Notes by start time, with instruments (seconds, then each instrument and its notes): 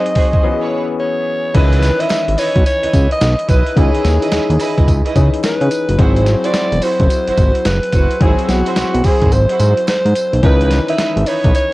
Already playing: grand piano F#3 C4 D#4 G#4, alto saxophone D#5
0.06 closed hi-hat
0.15 string section F#4 G#4 C5, kick, open hi-hat
0.33 kick, closed hi-hat
0.43 grand piano E3 B3 C#4 F#4
0.52 grand piano G#4
0.61 string section E4 B4 C#5
0.99 alto saxophone C#5
1.54 analog synth bass C#2, grand piano D#3 E3 C#4 B4, string section E4 B4 D#5, alto saxophone B4, kick, closed hi-hat, crash
1.73 closed hi-hat
1.83 snare, closed hi-hat, tambourine
2.00 string section E4 B4 D#5, alto saxophone E5, closed hi-hat
2.10 snare, clap, closed hi-hat, tambourine
2.28 analog synth bass G#1, closed hi-hat
2.38 string section E4 B4 D#5, alto saxophone C#5, open hi-hat, tambourine
2.56 analog synth bass B1, kick, closed hi-hat
2.66 alto saxophone C#5, closed hi-hat, tambourine
2.83 analog synth bass C#2, string section E4 B4 D#5, closed hi-hat
2.93 analog synth bass C#2, kick, closed hi-hat, tambourine
3.11 alto saxophone D#5, closed hi-hat
3.21 analog synth bass B1, snare, clap, closed hi-hat, tambourine
3.39 closed hi-hat
3.48 analog synth bass B1, string section E4 B4 D#5, alto saxophone B4, kick, closed hi-hat, tambourine
3.67 closed hi-hat
3.76 analog synth bass C#2, grand piano D#3 C#4 D#4 C#5, string section E4 B4 D#5, alto saxophone G#4, kick, closed hi-hat
3.82 grand piano E3
3.95 closed hi-hat
4.05 analog synth bass D#2, snare, closed hi-hat, tambourine
4.22 string section E4 B4 D#5, closed hi-hat
4.32 analog synth bass D#2, alto saxophone G#4, snare, clap, closed hi-hat, tambourine
4.50 analog synth bass D#2, closed hi-hat
4.59 string section E4 B4 D#5, open hi-hat, tambourine
4.78 analog synth bass C#2, kick, closed hi-hat
4.88 analog synth bass C#2, kick, closed hi-hat, tambourine
5.05 string section E4 B4 D#5, closed hi-hat
5.15 analog synth bass C#3, grand piano E3 C#4 D#4 G#4, kick, closed hi-hat, tambourine
5.34 closed hi-hat
5.44 alto saxophone B4, snare, clap, closed hi-hat, tambourine
5.61 analog synth bass C#3, closed hi-hat
5.71 closed hi-hat, tambourine
5.89 analog synth bass F#1, closed hi-hat
5.98 analog synth bass G#1, grand piano F#3 C4 E4 G#4, string section E4 F#4 C5, alto saxophone C5, kick, closed hi-hat
6.16 closed hi-hat
6.26 snare, closed hi-hat, tambourine
6.44 string section E4 F#4 C5, alto saxophone D5, closed hi-hat
6.54 snare, clap, closed hi-hat, tambourine
6.72 analog synth bass E1, closed hi-hat
6.82 string section E4 F#4 C5, alto saxophone C5, open hi-hat, tambourine
7.00 analog synth bass F#1, kick, closed hi-hat
7.10 closed hi-hat, tambourine
7.27 analog synth bass G#1, string section E4 F#4 C5, closed hi-hat
7.38 analog synth bass G#1, kick, closed hi-hat, tambourine
7.55 closed hi-hat
7.65 analog synth bass F#1, alto saxophone B4, snare, clap, closed hi-hat, tambourine
7.83 closed hi-hat
7.92 analog synth bass F#1, string section E4 F#4 C5, kick, closed hi-hat, tambourine
8.11 closed hi-hat
8.20 analog synth bass G#1, grand piano F#3 C4 E4 G#4, string section E4 F#4 C5, alto saxophone G#4, kick, closed hi-hat
8.39 closed hi-hat
8.44 alto saxophone G#4
8.49 analog synth bass B1, alto saxophone F#4, snare, closed hi-hat, tambourine
8.66 string section E4 F#4 C5, closed hi-hat
8.76 analog synth bass B1, snare, clap, closed hi-hat, tambourine
8.94 analog synth bass B1, closed hi-hat
9.04 string section E4 F#4 C5, alto saxophone G#4, kick, open hi-hat, tambourine
9.22 analog synth bass G#1, kick, closed hi-hat
9.32 analog synth bass G#1, alto saxophone C5, closed hi-hat, tambourine
9.49 string section E4 F#4 C5, closed hi-hat
9.60 analog synth bass G#2, closed hi-hat, tambourine
9.77 closed hi-hat
9.88 alto saxophone C5, snare, clap, closed hi-hat, tambourine
10.05 analog synth bass G#2, closed hi-hat
10.15 closed hi-hat, tambourine
10.33 analog synth bass B1, closed hi-hat
10.43 analog synth bass C#2, grand piano D#3 E3 C#4 A#4, string section D#4 E4 B4, alto saxophone B4, kick, closed hi-hat
10.51 grand piano B4
10.61 closed hi-hat
10.71 snare, closed hi-hat, tambourine
10.88 string section D#4 E4 B4, alto saxophone E5, closed hi-hat
10.98 snare, clap, closed hi-hat, tambourine
11.16 analog synth bass G#1, closed hi-hat
11.26 string section D#4 E4 B4, alto saxophone C#5, open hi-hat, tambourine
11.44 analog synth bass B1, kick, closed hi-hat
11.55 alto saxophone C#5, closed hi-hat, tambourine